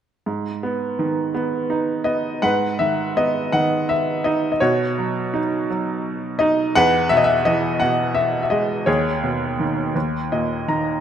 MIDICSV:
0, 0, Header, 1, 2, 480
1, 0, Start_track
1, 0, Key_signature, 5, "minor"
1, 0, Tempo, 725514
1, 179, Time_signature, 6, 3, 24, 8
1, 3535, Tempo, 706714
1, 5935, Tempo, 726392
1, 7341, End_track
2, 0, Start_track
2, 0, Title_t, "Upright piano"
2, 0, Program_c, 0, 0
2, 174, Note_on_c, 0, 44, 36
2, 288, Control_c, 0, 64, 127
2, 418, Note_on_c, 0, 59, 32
2, 655, Note_on_c, 0, 51, 38
2, 880, Note_off_c, 0, 59, 0
2, 890, Note_on_c, 0, 59, 38
2, 1124, Note_on_c, 0, 63, 35
2, 1347, Note_off_c, 0, 59, 0
2, 1352, Note_on_c, 0, 75, 53
2, 1357, Note_on_c, 0, 59, 32
2, 1580, Note_off_c, 0, 44, 0
2, 1580, Note_off_c, 0, 51, 0
2, 1593, Note_off_c, 0, 63, 0
2, 1597, Note_off_c, 0, 59, 0
2, 1602, Note_on_c, 0, 78, 69
2, 1606, Note_on_c, 0, 44, 46
2, 1610, Note_off_c, 0, 75, 0
2, 1612, Note_on_c, 0, 71, 53
2, 1617, Control_c, 0, 64, 0
2, 1738, Control_c, 0, 64, 127
2, 1845, Note_on_c, 0, 76, 58
2, 1854, Note_on_c, 0, 51, 30
2, 1859, Note_off_c, 0, 78, 0
2, 2096, Note_on_c, 0, 59, 37
2, 2096, Note_on_c, 0, 75, 65
2, 2100, Note_off_c, 0, 76, 0
2, 2314, Note_off_c, 0, 71, 0
2, 2326, Note_off_c, 0, 51, 0
2, 2332, Note_on_c, 0, 78, 65
2, 2336, Note_on_c, 0, 51, 39
2, 2345, Note_off_c, 0, 75, 0
2, 2573, Note_on_c, 0, 76, 64
2, 2582, Note_off_c, 0, 78, 0
2, 2807, Note_on_c, 0, 75, 59
2, 2817, Note_on_c, 0, 63, 41
2, 2822, Note_off_c, 0, 76, 0
2, 2979, Note_off_c, 0, 75, 0
2, 2989, Note_on_c, 0, 75, 44
2, 3029, Note_off_c, 0, 44, 0
2, 3029, Note_off_c, 0, 59, 0
2, 3034, Note_off_c, 0, 51, 0
2, 3046, Note_off_c, 0, 75, 0
2, 3046, Note_on_c, 0, 73, 60
2, 3049, Note_off_c, 0, 63, 0
2, 3053, Note_on_c, 0, 47, 52
2, 3055, Note_on_c, 0, 66, 38
2, 3064, Control_c, 0, 64, 0
2, 3181, Control_c, 0, 64, 127
2, 3295, Note_on_c, 0, 54, 36
2, 3531, Note_on_c, 0, 63, 45
2, 3561, Note_off_c, 0, 73, 0
2, 3748, Note_off_c, 0, 66, 0
2, 3767, Note_off_c, 0, 54, 0
2, 3777, Note_on_c, 0, 54, 42
2, 4244, Note_on_c, 0, 75, 70
2, 4246, Note_off_c, 0, 63, 0
2, 4256, Note_on_c, 0, 63, 48
2, 4470, Note_off_c, 0, 47, 0
2, 4477, Note_off_c, 0, 54, 0
2, 4490, Note_off_c, 0, 63, 0
2, 4494, Note_on_c, 0, 78, 89
2, 4496, Note_on_c, 0, 40, 62
2, 4499, Note_off_c, 0, 75, 0
2, 4506, Note_on_c, 0, 71, 64
2, 4508, Control_c, 0, 64, 0
2, 4622, Control_c, 0, 64, 127
2, 4724, Note_on_c, 0, 76, 79
2, 4735, Note_on_c, 0, 47, 41
2, 4743, Note_off_c, 0, 78, 0
2, 4775, Note_on_c, 0, 75, 66
2, 4778, Note_off_c, 0, 76, 0
2, 4824, Note_on_c, 0, 76, 74
2, 4825, Note_off_c, 0, 75, 0
2, 4968, Note_on_c, 0, 75, 70
2, 4975, Note_on_c, 0, 52, 44
2, 4978, Note_off_c, 0, 76, 0
2, 5191, Note_off_c, 0, 71, 0
2, 5201, Note_on_c, 0, 78, 67
2, 5205, Note_off_c, 0, 47, 0
2, 5215, Note_on_c, 0, 47, 43
2, 5217, Note_off_c, 0, 75, 0
2, 5438, Note_on_c, 0, 76, 62
2, 5453, Note_off_c, 0, 78, 0
2, 5617, Note_off_c, 0, 76, 0
2, 5627, Note_on_c, 0, 76, 46
2, 5680, Note_on_c, 0, 75, 59
2, 5683, Note_off_c, 0, 76, 0
2, 5688, Note_on_c, 0, 56, 43
2, 5903, Note_off_c, 0, 40, 0
2, 5904, Note_off_c, 0, 52, 0
2, 5911, Note_off_c, 0, 47, 0
2, 5923, Note_off_c, 0, 56, 0
2, 5924, Note_on_c, 0, 73, 54
2, 5930, Note_on_c, 0, 39, 53
2, 5931, Note_on_c, 0, 68, 41
2, 5933, Note_off_c, 0, 75, 0
2, 5941, Control_c, 0, 64, 0
2, 6049, Control_c, 0, 64, 127
2, 6172, Note_on_c, 0, 47, 36
2, 6410, Note_on_c, 0, 51, 39
2, 6434, Note_off_c, 0, 73, 0
2, 6617, Note_off_c, 0, 68, 0
2, 6621, Note_off_c, 0, 39, 0
2, 6632, Note_off_c, 0, 47, 0
2, 6640, Note_off_c, 0, 51, 0
2, 6647, Note_on_c, 0, 39, 43
2, 6652, Control_c, 0, 64, 0
2, 6772, Control_c, 0, 64, 127
2, 6889, Note_on_c, 0, 75, 47
2, 6891, Note_on_c, 0, 46, 36
2, 7113, Note_off_c, 0, 75, 0
2, 7129, Note_on_c, 0, 51, 34
2, 7130, Note_on_c, 0, 82, 46
2, 7341, Note_off_c, 0, 39, 0
2, 7341, Note_off_c, 0, 46, 0
2, 7341, Note_off_c, 0, 51, 0
2, 7341, Note_off_c, 0, 82, 0
2, 7341, End_track
0, 0, End_of_file